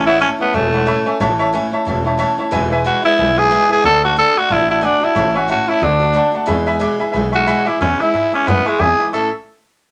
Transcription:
Already playing: A1
0.06 A3 C#4 E4 C#5 E5 F#5
0.20 A2 E3 A3 C#4 E4 C#5 E5 A5
0.39 A3 B3 C#4 E4 C#5 E5 A5, muted upright bass stroke
0.53 E1 E3 A3 C#4 E4 C#5 E5 G#5
0.72 A3 C#4 E4 C#5 E5 F#5
0.86 A2 E3 A3 C#4 E4 C#5 E5 B5
1.05 A3 C#4 E4 C#5 E5 G#5, muted upright bass stroke
1.20 A1 A2 E3 A3 C#4 E4 C#5 E5 A5
1.38 A3 C#4 E4 C#5 E5 A5
1.53 A2 E3 A3 C#4 E4 C#5 E5 G#5
1.71 A3 C#4 E4 C#5 E5 A5, muted upright bass stroke
1.85 E1 E3 A3 C#4 E4 C#5 E5 A5
2.04 A3 C#4 E4 C#5 E5 A5
2.18 A2 E3 A3 C#4 E4 C#5 E5 A5
2.38 A3 C#4 E4 C#5 E5 A5, muted upright bass stroke
2.51 E1 E2 B2 E3 G#3 B3 E4 B4 E5 G#5
2.70 E3 G#3 B3 E4 B4 E5 G#5
2.84 E2 B2 E3 G#3 B3 E4 F#4 B4 E5 G#5
3.03 E3 G#3 B3 E4 B4 E5 B5, muted upright bass stroke
3.17 B1 E3 G#3 B3 E4 B4 E5 G#5
3.36 E3 G#3 B3 E4 G#4 B4 E5 G#5
3.50 E2 B2 E3 G#3 B3 E4 B4 E5 G#5
3.70 E3 G#3 B3 E4 G#4 B4 E5 G#5, muted upright bass stroke
3.83 D2 D3 A3 D4 F#4 A4 D5 F#5 A5
4.03 A3 D4 F#4 D5 F#5 A5
4.16 D3 A3 D4 F#4 A4 D5 F#5 A5
4.36 A3 D4 F#4 D5 F#5 B5, muted upright bass stroke
4.48 A1 D3 A3 D4 E4 F#4 D5 F#5 A5
4.68 A3 D4 E4 F#4 D5 F#5 A5
4.81 D3 A3 D4 F#4 D5 F#5 G#5
5.00 A3 D4 E4 F#4 D5 F#5 A5, muted upright bass stroke
5.15 A1 A2 E3 A3 C#4 E4 C#5 E5 A5
5.34 A3 C#4 E4 F#4 C#5 E5 G#5
5.47 A2 E3 A3 C#4 E4 F#4 C#5 E5 A5
5.66 A3 C#4 E4 C#5 E5 A5, muted upright bass stroke
5.79 D2 D3 A3 D4 F#4 D5 F#5 A5
5.83 D4
5.99 A3 D4 F#4 D5 F#5 A5
6.13 D3 A3 D4 F#4 D5 F#5 A5
6.32 A3 D4 F#4 D5 F#5 A5, muted upright bass stroke
6.46 E2 B2 E3 G#3 B3 G#4 E5 G#5 B5
6.66 E3 G#3 B3 G#4 E5 G#5 B5
6.79 E2 B2 E3 G#3 B3 G#4 E5 G#5 D6
6.99 E3 G#3 B3 G#4 E5 G#5 B5, muted upright bass stroke
7.12 B1 E3 G#3 B3 G#4 E5 G#5 B5
7.32 E3 G#3 B3 F#4 G#4 E5 G#5 C#6
7.47 E2 B2 E3 G#3 B3 G#4 E5 F#5 G#5 B5
7.66 E3 G#3 B3 E4 G#4 E5 G#5 D6, muted upright bass stroke
7.80 E2 B2 E3 G#3 B3 C#4 E4 E5 G#5 B5
7.99 E3 G#3 B3 E4 E5 G#5 B5
8.14 G#2 E3 G#3 B3 E4 E5 G#5 B5
8.32 E3 G#3 B3 C#4 E4 E5 G#5 D6, muted upright bass stroke
8.46 E2 F#2 B2 E3 G#3 B3 E4 E5 G#5 B5
8.65 E3 G#3 B3 E4 E5 G#5 C#6, muted upright bass stroke
8.78 E2 E3 G#3 B3 E4 G#4 E5 G#5 B5
8.98 E3 G#3 B3 E4 E5 G#5 D6
9.13 A1 A2 E3 A3 C#4 E4 A4 E5 A5 C#6

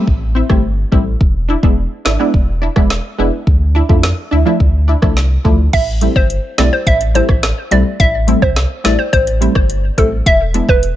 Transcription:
0.07 A1, kick
0.35 C4 E4
0.49 G1 G3 A3 C4 E4, kick, cross-stick
0.92 A1 G3 A3 C4 E4, kick
1.21 E1, kick
1.49 D4 E4
1.63 E1 G#3 B3 D4 E4, kick
2.05 G#1 D4 E4, cross-stick, snare
2.19 G#3 B3 D4 E4
2.34 E1, kick
2.62 D4 E4
2.76 E1 G#3 B3 D4 E4, kick, cross-stick
2.90 cross-stick, snare
3.18 F1 G#3 B3 D4 E4
3.47 D2, kick
3.75 D4 E4
3.89 F2 F3 A3 D4 E4, kick
4.03 cross-stick, snare
4.31 D2 D4 E4
4.45 F3 A3 D4 E4
4.60 D2, kick
4.88 D4 E4
5.02 C2 F3 A3 D4 E4, kick, cross-stick
5.17 snare
5.44 D2 F3 A3 D4 E4, kick
5.73 A1 E5, kick, closed hi-hat, crash
6.01 G3 A3 C4 E4, closed hi-hat
6.16 G1 C5, kick
6.30 closed hi-hat
6.58 B1 G3 A3 C4 E4 D5, cross-stick, snare, closed hi-hat
6.73 C5
6.87 A1 E5, kick, closed hi-hat
7.01 closed hi-hat
7.14 G3 A3 C4 E4 C5, closed hi-hat
7.29 A1, kick, cross-stick
7.43 cross-stick, snare, closed hi-hat
7.71 B1 G3 A3 C4 E4 D5, closed hi-hat
8.00 A1 E5, kick, closed hi-hat
8.27 G3 A3 C4 E4, closed hi-hat
8.42 C2 C5, kick
8.56 cross-stick, snare, closed hi-hat
8.84 A1 G3 A3 C4 E4 D5, cross-stick, snare, closed hi-hat
8.99 C5
9.13 A1 C5, kick, closed hi-hat
9.27 closed hi-hat
9.41 G3 A3 C4 E4, closed hi-hat
9.55 G1, kick, cross-stick
9.70 closed hi-hat
9.97 A1 G3 A3 C4 E4 A4, kick, closed hi-hat
10.26 E1 E5, kick, closed hi-hat
10.54 G#3 B3 D4 E4, closed hi-hat
10.69 E1 B4, kick
10.83 closed hi-hat

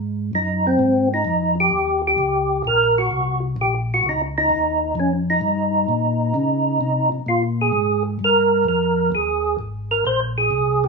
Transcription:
Already playing: G#2
0.33 F#2 D#4
0.67 C4
0.79 G#2
1.14 D#4
1.25 F2
1.60 G4
1.71 D#2
2.07 G4
2.18 C#2
2.65 A#1 A#4
2.98 F#4
3.11 C2
3.56 A#1
3.61 G4
3.94 F#4
4.04 C#2
4.09 D#4
4.38 D#4
4.50 D#2
4.95 F2
5.00 C#4
5.30 D#4
5.41 G2
5.88 A#2
6.34 C#3
6.81 C3
7.12 C3
7.26 A#2 F4
7.61 G#4
7.72 G#2
8.19 G2
8.24 A#4
8.64 F2
8.68 A#4
9.12 D#2 G#4
9.59 G#1
9.91 A#4
10.05 A#1 C5
10.38 G#4
10.51 C2
10.84 G4

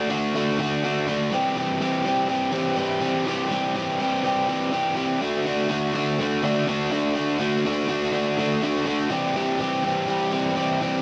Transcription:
Already playing: F#4
0.09 D3 A3 D4 F#4
0.35 D3 A3 D4 F#4
0.58 D3 A3 D4 F#4
0.84 D3 A3 D4 F#4
1.07 D3 A3 D4 F#4
1.32 E3 G3 C4 G4
1.55 E3 G3 C4 G4
1.80 E3 G3 C4 G4
2.05 E3 G3 C4 G4
2.28 E3 G3 C4 G4
2.52 E3 G3 C4 G4
2.76 E3 G3 C4 G4
3.01 E3 G3 C4 G4
3.26 E3 G3 C4 G4
3.51 E3 G3 C4 G4
3.75 E3 G3 C4 G4
4.00 E3 G3 C4 G4
4.24 E3 G3 C4 G4
4.48 E3 G3 C4 G4
4.72 E3 G3 C4 G4
4.95 E3 G3 C4 G4
5.21 D3 A3 D4 F#4
5.45 D3 A3 D4 F#4
5.68 D3 A3 D4 F#4
5.93 D3 A3 D4 F#4
6.19 D3 A3 D4 F#4
6.43 D3 A3 D4 F#4
6.67 D3 A3 D4 F#4
6.91 D3 A3 D4 F#4
7.15 D3 A3 D4 F#4
7.39 D3 A3 D4 F#4
7.65 D3 A3 D4 F#4
7.89 D3 A3 D4 F#4
8.12 D3 A3 D4 F#4
8.38 D3 A3 D4 F#4
8.62 D3 A3 D4 F#4
8.86 D3 A3 D4 F#4
9.10 E3 G3 C4 G4
9.35 E3 G3 C4 G4
9.59 E3 G3 C4 G4
9.83 E3 G3 C4 G4
10.08 E3 G3 C4 G4
10.31 E3 G3 C4 G4
10.55 E3 G3 C4 G4
10.80 E3 G3 C4 G4

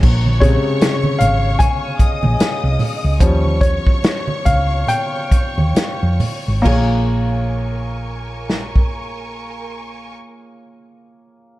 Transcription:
0.03 A#1 C#5 C#6, kick, crash
0.26 high conga
0.40 C3 C#3 G#3 C#5, kick, closed hi-hat, muted conga
0.81 snare, closed hi-hat, muted conga
1.03 high conga
1.19 G#1 F5, closed hi-hat, muted conga, low conga
1.59 G#5, kick, closed hi-hat, muted conga, low conga
1.99 D#5 D#6, muted fingered electric bass stroke, kick, closed hi-hat
2.23 A#1, high conga
2.39 snare, closed hi-hat, muted conga
2.64 C2
2.79 open hi-hat, muted conga, low conga
3.04 C#2
3.20 D#2 F3 G3 C#4 C#5 C#6, kick, closed hi-hat, muted conga
3.44 high conga
3.61 C#5, kick, closed hi-hat
3.87 kick
4.03 snare, closed hi-hat, muted conga
4.28 high conga
4.45 C#2 F5, kick, closed hi-hat, muted conga, low conga
4.87 G5, closed hi-hat, muted conga, low conga
5.32 muted fingered electric bass stroke, kick, closed hi-hat
5.58 D#2, high conga
5.75 snare, closed hi-hat, muted conga
6.03 F2
6.20 open hi-hat, muted conga, low conga
6.48 G#1
6.62 A#1 A#3 F4 A#4 G#5 C#6, kick, crash, high conga
6.66 G#4 C#5
8.50 snare
8.76 kick

